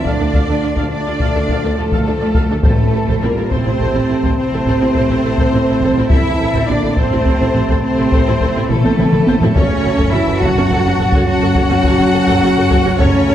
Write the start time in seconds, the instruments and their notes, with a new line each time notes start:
Already playing: woodwind section A3 F4 A4 A5
0.03 double bass section D2, trombone section D3, french horn section A3, cello section D4, viola section A4 F5, violin section D5, taiko
0.20 double bass section D2, viola section D4 A4
0.33 double bass section D2, viola section A4 F5, taiko
0.49 double bass section D2, viola section D4 A4
0.63 double bass section D2, viola section F4 D5
0.76 double bass section D2, viola section A4 F5, taiko
0.91 trombone section D3, french horn section A3, cello section D4, violin section D5
1.07 double bass section D2, viola section F4 D5
1.20 double bass section D2, viola section A4 F5, taiko
1.36 double bass section D2, viola section D4 A4
1.49 double bass section D2, viola section A4 F5, taiko
1.64 double bass section D2, viola section D4 A4
1.78 double bass section D2, trombone section A2, french horn section F3, cello section A3, viola section F4 D5, violin section A4
1.92 double bass section D2, viola section A4 F5, taiko
2.07 double bass section D2, viola section D4 A4
2.21 double bass section D2, viola section F4 D5
2.34 double bass section D2, viola section A4 F5, taiko
2.50 double bass section D2, viola section D4 A4
2.63 double bass section A1, trombone section A2, timpani A2, french horn section E3, cello section A3, woodwind section A3 E4 A4 A5, violin section A4, viola section A4 C5, taiko
2.93 double bass section A1, viola section E4 A4
3.07 double bass section A1, viola section A4 C5, taiko
3.22 double bass section A1, trombone section A#2, french horn section G3, cello section A#3, viola section C4 E4, violin section A#4
3.37 double bass section A1, viola section E4 A4
3.51 double bass section A1, trombone section C3, french horn section A3, cello section C4, viola section A4 C5, violin section C5, taiko
3.66 double bass section A1, viola section C4 E4
3.80 double bass section A1, viola section A4 C5, taiko
3.95 double bass section A1, viola section C4 E4
4.09 double bass section A1, viola section E4 A4
4.23 double bass section A1, viola section A4 C5, taiko
4.37 trombone section C3, french horn section A3, cello section C4, violin section C5
4.52 double bass section A1, viola section E4 A4
4.66 double bass section A1, viola section A4 C5, taiko
4.81 double bass section A1, viola section C4 E4
4.94 double bass section A1, viola section A4 C5, taiko
5.09 double bass section A1, viola section C4 E4
5.24 double bass section A1, viola section E4 A4
5.38 double bass section A1, viola section A4 C5, taiko
5.53 double bass section A1, viola section C4 E4
5.68 double bass section A1, viola section E4 A4
5.81 double bass section A1, viola section A4 C5, taiko
5.96 double bass section A1, viola section C4 E4
6.10 double bass section A1, trombone section E3, woodwind section A3 E4 A4 A5, french horn section C4, cello section E4, viola section A4 C5, violin section E5, taiko
6.24 taiko low
6.40 double bass section A1, viola section E4 A4
6.54 double bass section A1, viola section A4 C5, taiko
6.67 double bass section A1, trombone section D3, french horn section A#3, viola section C4 E4, cello section D4, violin section D5
6.84 double bass section A1, viola section E4 A4
6.95 double bass section A1, trombone section C3, french horn section A3, cello section C4, viola section A4 C5, violin section C5, taiko
7.11 double bass section A1, viola section C4 E4, taiko low
7.26 double bass section A1, viola section A4 C5, taiko
7.41 double bass section A1, viola section C4 E4
7.54 double bass section A1, viola section E4 A4, taiko low
7.68 double bass section A1, viola section A4 C5, taiko
7.83 trombone section C3, french horn section A3, cello section C4, violin section C5
7.98 double bass section A1, viola section E4 A4
8.12 double bass section A1, viola section A4 C5, taiko
8.26 double bass section A1, viola section C4 E4, taiko low
8.40 double bass section A1, viola section A4 C5, taiko
8.56 double bass section A1, viola section C4 E4
8.69 double bass section A1, trombone section A2, french horn section E3, cello section A3, viola section E4 A4, violin section A4, taiko low-mid
8.84 double bass section A1, viola section A4 C5, taiko high
8.98 double bass section A1, viola section C4 E4, taiko mid
9.12 double bass section A1, viola section E4 A4, taiko mid
9.27 double bass section A1, viola section A4 C5, taiko high
9.41 double bass section A1, viola section C4 E4, taiko low
9.54 double bass section F#1, trombone section C#3, french horn section A3, woodwind section A3 F#4 C#5 A5, cello section C#4, viola section A4 C#5, violin section C#5, taiko
9.70 taiko low
9.84 double bass section F#1, viola section F#4 A4
9.99 double bass section F#1, viola section A4 C#5, taiko
10.12 double bass section F#1, trombone section E3, french horn section C#4, viola section C#4 F#4, cello section E4, violin section E5
10.27 double bass section F#1, viola section F#4 A4
10.40 double bass section F#1, trombone section F#3, french horn section C#4, cello section F#4, viola section A4 C#5, violin section F#5, taiko
10.55 double bass section F#1, viola section C#4 F#4, taiko low
10.70 double bass section F#1, viola section A4 C#5, taiko
10.85 double bass section F#1, viola section C#4 F#4
10.98 double bass section F#1, viola section F#4 A4, taiko low
11.12 double bass section F#1, viola section A4 C#5, taiko
11.25 trombone section F#3, french horn section C#4, cello section F#4, violin section F#5
11.41 double bass section F#1, viola section F#4 A4
11.55 double bass section F#1, viola section A4 C#5, taiko
11.70 double bass section F#1, viola section C#4 F#4, taiko low
11.84 double bass section F#1, viola section A4 C#5, taiko
11.99 double bass section F#1, viola section C#4 F#4
12.13 double bass section F#1, viola section F#4 A4
12.27 double bass section F#1, viola section A4 C#5, taiko
12.42 double bass section F#1, viola section C#4 F#4
12.56 double bass section F#1, viola section F#4 A4
12.70 double bass section F#1, viola section A4 C#5, taiko
12.85 double bass section F#1, viola section C#4 F#4
12.98 double bass section F#1, trombone section C#3, woodwind section A3 F#4 C#5 A5, french horn section A3, cello section C#4, viola section A4 C#5, violin section C#5, taiko
13.14 taiko low
13.28 double bass section F#1, viola section F#4 A4